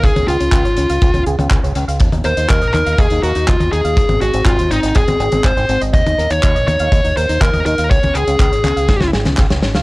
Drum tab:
HH |xxxxxxxxxxxxxxxx|xxxxxxxxxxxxxxxx|xxxxxxxxxxxxxxxx|xxxxxxxxxxxxxxxx|
CP |----x-------x---|----x-x-----x---|----x-------x---|----x-------x---|
SD |----------------|----------------|----------------|----------------|
T1 |-o-------o-o----|-o----o------o--|-o-------o-o----|-o----o------o--|
BD |o---o---o---o---|o---o---o---o---|o---o---o---o---|o---o---o---o---|

HH |xxxxxxxxxxxxxxxx|
CP |----x-x-----x---|
SD |--------oooooooo|
T1 |-o----o--o-o----|
BD |o---o---o---o---|